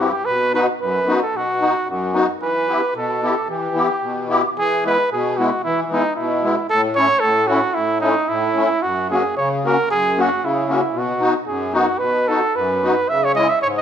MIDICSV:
0, 0, Header, 1, 3, 480
1, 0, Start_track
1, 0, Key_signature, 1, "minor"
1, 0, Tempo, 537153
1, 244, Time_signature, 2, 2, 24, 8
1, 4081, Key_signature, 4, "major"
1, 4561, Tempo, 531915
1, 12425, End_track
2, 0, Start_track
2, 0, Title_t, "Trumpet"
2, 0, Program_c, 0, 56
2, 0, Note_on_c, 0, 66, 75
2, 91, Note_off_c, 0, 66, 0
2, 106, Note_on_c, 0, 67, 81
2, 228, Note_on_c, 0, 71, 94
2, 241, Note_off_c, 0, 67, 0
2, 483, Note_off_c, 0, 71, 0
2, 491, Note_on_c, 0, 71, 79
2, 598, Note_off_c, 0, 71, 0
2, 722, Note_on_c, 0, 71, 85
2, 1062, Note_off_c, 0, 71, 0
2, 1089, Note_on_c, 0, 69, 82
2, 1221, Note_on_c, 0, 66, 92
2, 1234, Note_off_c, 0, 69, 0
2, 1691, Note_off_c, 0, 66, 0
2, 1704, Note_on_c, 0, 66, 70
2, 2028, Note_off_c, 0, 66, 0
2, 2169, Note_on_c, 0, 71, 93
2, 2609, Note_off_c, 0, 71, 0
2, 2653, Note_on_c, 0, 69, 76
2, 3092, Note_off_c, 0, 69, 0
2, 3135, Note_on_c, 0, 67, 78
2, 3818, Note_off_c, 0, 67, 0
2, 4099, Note_on_c, 0, 68, 107
2, 4319, Note_off_c, 0, 68, 0
2, 4346, Note_on_c, 0, 71, 97
2, 4556, Note_off_c, 0, 71, 0
2, 4581, Note_on_c, 0, 68, 86
2, 4804, Note_on_c, 0, 66, 79
2, 4818, Note_off_c, 0, 68, 0
2, 5036, Note_off_c, 0, 66, 0
2, 5041, Note_on_c, 0, 64, 97
2, 5211, Note_off_c, 0, 64, 0
2, 5217, Note_on_c, 0, 64, 61
2, 5294, Note_on_c, 0, 63, 93
2, 5307, Note_off_c, 0, 64, 0
2, 5507, Note_off_c, 0, 63, 0
2, 5513, Note_on_c, 0, 64, 76
2, 5960, Note_off_c, 0, 64, 0
2, 5994, Note_on_c, 0, 69, 107
2, 6104, Note_off_c, 0, 69, 0
2, 6233, Note_on_c, 0, 73, 109
2, 6452, Note_on_c, 0, 69, 102
2, 6465, Note_off_c, 0, 73, 0
2, 6700, Note_on_c, 0, 66, 90
2, 6714, Note_off_c, 0, 69, 0
2, 6943, Note_on_c, 0, 64, 90
2, 6957, Note_off_c, 0, 66, 0
2, 7174, Note_off_c, 0, 64, 0
2, 7180, Note_on_c, 0, 63, 88
2, 7433, Note_on_c, 0, 64, 85
2, 7447, Note_off_c, 0, 63, 0
2, 7919, Note_on_c, 0, 66, 92
2, 7933, Note_off_c, 0, 64, 0
2, 8169, Note_off_c, 0, 66, 0
2, 8173, Note_on_c, 0, 68, 84
2, 8393, Note_off_c, 0, 68, 0
2, 8408, Note_on_c, 0, 73, 81
2, 8519, Note_off_c, 0, 73, 0
2, 8674, Note_on_c, 0, 70, 90
2, 8883, Note_off_c, 0, 70, 0
2, 8895, Note_on_c, 0, 68, 103
2, 9169, Note_on_c, 0, 66, 86
2, 9183, Note_off_c, 0, 68, 0
2, 9382, Note_on_c, 0, 64, 73
2, 9396, Note_off_c, 0, 66, 0
2, 9867, Note_on_c, 0, 66, 89
2, 9880, Note_off_c, 0, 64, 0
2, 10097, Note_off_c, 0, 66, 0
2, 10308, Note_on_c, 0, 68, 72
2, 10556, Note_on_c, 0, 66, 81
2, 10570, Note_off_c, 0, 68, 0
2, 10770, Note_on_c, 0, 71, 94
2, 10783, Note_off_c, 0, 66, 0
2, 11037, Note_on_c, 0, 69, 94
2, 11051, Note_off_c, 0, 71, 0
2, 11290, Note_on_c, 0, 71, 81
2, 11303, Note_off_c, 0, 69, 0
2, 11767, Note_on_c, 0, 76, 91
2, 11781, Note_off_c, 0, 71, 0
2, 11906, Note_on_c, 0, 73, 97
2, 11919, Note_off_c, 0, 76, 0
2, 12000, Note_off_c, 0, 73, 0
2, 12005, Note_on_c, 0, 75, 99
2, 12130, Note_on_c, 0, 76, 86
2, 12143, Note_off_c, 0, 75, 0
2, 12238, Note_off_c, 0, 76, 0
2, 12244, Note_on_c, 0, 73, 90
2, 12298, Note_off_c, 0, 73, 0
2, 12383, Note_on_c, 0, 75, 87
2, 12425, Note_off_c, 0, 75, 0
2, 12425, End_track
3, 0, Start_track
3, 0, Title_t, "Accordion"
3, 0, Program_c, 1, 21
3, 0, Note_on_c, 1, 43, 69
3, 0, Note_on_c, 1, 60, 52
3, 0, Note_on_c, 1, 64, 42
3, 0, Note_on_c, 1, 67, 55
3, 105, Note_off_c, 1, 60, 0
3, 108, Note_off_c, 1, 64, 0
3, 109, Note_off_c, 1, 67, 0
3, 114, Note_off_c, 1, 43, 0
3, 245, Note_on_c, 1, 47, 62
3, 483, Note_on_c, 1, 59, 53
3, 483, Note_on_c, 1, 63, 46
3, 490, Note_on_c, 1, 66, 65
3, 594, Note_off_c, 1, 59, 0
3, 594, Note_off_c, 1, 63, 0
3, 597, Note_off_c, 1, 66, 0
3, 606, Note_off_c, 1, 47, 0
3, 719, Note_on_c, 1, 42, 77
3, 959, Note_on_c, 1, 59, 58
3, 964, Note_on_c, 1, 66, 66
3, 966, Note_on_c, 1, 63, 51
3, 1072, Note_off_c, 1, 59, 0
3, 1074, Note_off_c, 1, 66, 0
3, 1075, Note_off_c, 1, 63, 0
3, 1082, Note_off_c, 1, 42, 0
3, 1197, Note_on_c, 1, 47, 58
3, 1441, Note_on_c, 1, 63, 52
3, 1443, Note_on_c, 1, 59, 52
3, 1449, Note_on_c, 1, 66, 62
3, 1551, Note_off_c, 1, 63, 0
3, 1552, Note_off_c, 1, 59, 0
3, 1555, Note_off_c, 1, 66, 0
3, 1559, Note_off_c, 1, 47, 0
3, 1674, Note_on_c, 1, 42, 78
3, 1909, Note_on_c, 1, 59, 65
3, 1913, Note_on_c, 1, 63, 52
3, 1917, Note_on_c, 1, 66, 59
3, 2022, Note_off_c, 1, 59, 0
3, 2024, Note_off_c, 1, 63, 0
3, 2026, Note_off_c, 1, 66, 0
3, 2034, Note_off_c, 1, 42, 0
3, 2141, Note_on_c, 1, 52, 59
3, 2401, Note_on_c, 1, 59, 62
3, 2401, Note_on_c, 1, 64, 47
3, 2406, Note_on_c, 1, 67, 58
3, 2506, Note_off_c, 1, 52, 0
3, 2507, Note_off_c, 1, 59, 0
3, 2507, Note_off_c, 1, 64, 0
3, 2509, Note_off_c, 1, 67, 0
3, 2633, Note_on_c, 1, 47, 72
3, 2885, Note_on_c, 1, 59, 57
3, 2888, Note_on_c, 1, 64, 53
3, 2894, Note_on_c, 1, 67, 65
3, 2989, Note_off_c, 1, 59, 0
3, 2990, Note_off_c, 1, 64, 0
3, 2994, Note_off_c, 1, 47, 0
3, 2994, Note_off_c, 1, 67, 0
3, 3115, Note_on_c, 1, 52, 59
3, 3353, Note_on_c, 1, 64, 51
3, 3355, Note_on_c, 1, 59, 53
3, 3364, Note_on_c, 1, 67, 64
3, 3464, Note_off_c, 1, 64, 0
3, 3465, Note_off_c, 1, 59, 0
3, 3469, Note_off_c, 1, 67, 0
3, 3476, Note_off_c, 1, 52, 0
3, 3590, Note_on_c, 1, 47, 62
3, 3836, Note_on_c, 1, 64, 63
3, 3837, Note_on_c, 1, 59, 67
3, 3839, Note_on_c, 1, 67, 76
3, 3947, Note_off_c, 1, 59, 0
3, 3947, Note_off_c, 1, 64, 0
3, 3948, Note_off_c, 1, 67, 0
3, 3955, Note_off_c, 1, 47, 0
3, 4084, Note_on_c, 1, 52, 62
3, 4334, Note_on_c, 1, 56, 61
3, 4334, Note_on_c, 1, 59, 56
3, 4342, Note_on_c, 1, 64, 57
3, 4436, Note_off_c, 1, 56, 0
3, 4436, Note_off_c, 1, 59, 0
3, 4440, Note_off_c, 1, 64, 0
3, 4442, Note_off_c, 1, 52, 0
3, 4569, Note_on_c, 1, 47, 81
3, 4820, Note_on_c, 1, 59, 52
3, 4821, Note_on_c, 1, 56, 64
3, 4824, Note_on_c, 1, 64, 66
3, 4920, Note_off_c, 1, 56, 0
3, 4920, Note_off_c, 1, 59, 0
3, 4922, Note_off_c, 1, 64, 0
3, 4926, Note_off_c, 1, 47, 0
3, 5061, Note_on_c, 1, 52, 65
3, 5293, Note_on_c, 1, 56, 50
3, 5297, Note_on_c, 1, 64, 66
3, 5302, Note_on_c, 1, 59, 66
3, 5395, Note_off_c, 1, 56, 0
3, 5397, Note_off_c, 1, 64, 0
3, 5399, Note_off_c, 1, 59, 0
3, 5409, Note_off_c, 1, 52, 0
3, 5529, Note_on_c, 1, 47, 76
3, 5760, Note_on_c, 1, 56, 67
3, 5762, Note_on_c, 1, 59, 55
3, 5768, Note_on_c, 1, 64, 64
3, 5867, Note_off_c, 1, 56, 0
3, 5868, Note_off_c, 1, 59, 0
3, 5871, Note_off_c, 1, 64, 0
3, 5882, Note_off_c, 1, 47, 0
3, 6007, Note_on_c, 1, 45, 76
3, 6232, Note_on_c, 1, 57, 57
3, 6238, Note_on_c, 1, 64, 65
3, 6240, Note_on_c, 1, 61, 62
3, 6341, Note_off_c, 1, 57, 0
3, 6344, Note_off_c, 1, 64, 0
3, 6345, Note_off_c, 1, 61, 0
3, 6359, Note_off_c, 1, 45, 0
3, 6462, Note_on_c, 1, 45, 80
3, 6701, Note_on_c, 1, 57, 66
3, 6708, Note_on_c, 1, 61, 63
3, 6708, Note_on_c, 1, 64, 61
3, 6815, Note_off_c, 1, 57, 0
3, 6819, Note_off_c, 1, 61, 0
3, 6819, Note_off_c, 1, 64, 0
3, 6826, Note_off_c, 1, 45, 0
3, 6937, Note_on_c, 1, 45, 52
3, 7188, Note_on_c, 1, 57, 52
3, 7190, Note_on_c, 1, 61, 64
3, 7197, Note_on_c, 1, 64, 64
3, 7301, Note_off_c, 1, 57, 0
3, 7302, Note_off_c, 1, 61, 0
3, 7305, Note_off_c, 1, 64, 0
3, 7306, Note_off_c, 1, 45, 0
3, 7434, Note_on_c, 1, 45, 73
3, 7676, Note_on_c, 1, 57, 65
3, 7679, Note_on_c, 1, 61, 59
3, 7687, Note_on_c, 1, 64, 64
3, 7789, Note_off_c, 1, 57, 0
3, 7790, Note_off_c, 1, 61, 0
3, 7794, Note_off_c, 1, 64, 0
3, 7800, Note_off_c, 1, 45, 0
3, 7929, Note_on_c, 1, 42, 62
3, 8178, Note_on_c, 1, 61, 55
3, 8179, Note_on_c, 1, 58, 57
3, 8184, Note_on_c, 1, 66, 54
3, 8282, Note_off_c, 1, 61, 0
3, 8283, Note_off_c, 1, 58, 0
3, 8285, Note_off_c, 1, 66, 0
3, 8289, Note_off_c, 1, 42, 0
3, 8407, Note_on_c, 1, 49, 76
3, 8656, Note_on_c, 1, 58, 61
3, 8663, Note_on_c, 1, 61, 61
3, 8666, Note_on_c, 1, 66, 59
3, 8761, Note_off_c, 1, 58, 0
3, 8765, Note_off_c, 1, 61, 0
3, 8766, Note_off_c, 1, 66, 0
3, 8768, Note_off_c, 1, 49, 0
3, 8889, Note_on_c, 1, 42, 62
3, 9137, Note_on_c, 1, 58, 55
3, 9143, Note_on_c, 1, 61, 62
3, 9146, Note_on_c, 1, 66, 66
3, 9240, Note_off_c, 1, 58, 0
3, 9243, Note_off_c, 1, 61, 0
3, 9244, Note_off_c, 1, 66, 0
3, 9246, Note_off_c, 1, 42, 0
3, 9360, Note_on_c, 1, 49, 76
3, 9596, Note_on_c, 1, 58, 58
3, 9597, Note_on_c, 1, 61, 48
3, 9609, Note_on_c, 1, 66, 64
3, 9707, Note_off_c, 1, 58, 0
3, 9708, Note_off_c, 1, 61, 0
3, 9713, Note_off_c, 1, 66, 0
3, 9718, Note_off_c, 1, 49, 0
3, 9823, Note_on_c, 1, 47, 71
3, 10071, Note_on_c, 1, 63, 59
3, 10072, Note_on_c, 1, 59, 61
3, 10079, Note_on_c, 1, 66, 74
3, 10183, Note_off_c, 1, 59, 0
3, 10183, Note_off_c, 1, 63, 0
3, 10187, Note_off_c, 1, 66, 0
3, 10188, Note_off_c, 1, 47, 0
3, 10310, Note_on_c, 1, 42, 80
3, 10541, Note_on_c, 1, 59, 59
3, 10547, Note_on_c, 1, 63, 56
3, 10553, Note_on_c, 1, 66, 74
3, 10657, Note_off_c, 1, 59, 0
3, 10659, Note_off_c, 1, 63, 0
3, 10662, Note_off_c, 1, 66, 0
3, 10671, Note_off_c, 1, 42, 0
3, 10789, Note_on_c, 1, 47, 66
3, 11040, Note_on_c, 1, 59, 49
3, 11045, Note_on_c, 1, 63, 58
3, 11051, Note_on_c, 1, 66, 59
3, 11145, Note_off_c, 1, 59, 0
3, 11148, Note_off_c, 1, 63, 0
3, 11149, Note_off_c, 1, 47, 0
3, 11151, Note_off_c, 1, 66, 0
3, 11289, Note_on_c, 1, 42, 77
3, 11535, Note_on_c, 1, 59, 57
3, 11539, Note_on_c, 1, 63, 47
3, 11542, Note_on_c, 1, 66, 61
3, 11636, Note_off_c, 1, 59, 0
3, 11638, Note_off_c, 1, 63, 0
3, 11639, Note_off_c, 1, 66, 0
3, 11645, Note_off_c, 1, 42, 0
3, 11774, Note_on_c, 1, 49, 62
3, 12004, Note_on_c, 1, 56, 59
3, 12011, Note_on_c, 1, 61, 44
3, 12012, Note_on_c, 1, 64, 64
3, 12111, Note_off_c, 1, 56, 0
3, 12115, Note_off_c, 1, 61, 0
3, 12115, Note_off_c, 1, 64, 0
3, 12128, Note_off_c, 1, 49, 0
3, 12257, Note_on_c, 1, 44, 72
3, 12425, Note_off_c, 1, 44, 0
3, 12425, End_track
0, 0, End_of_file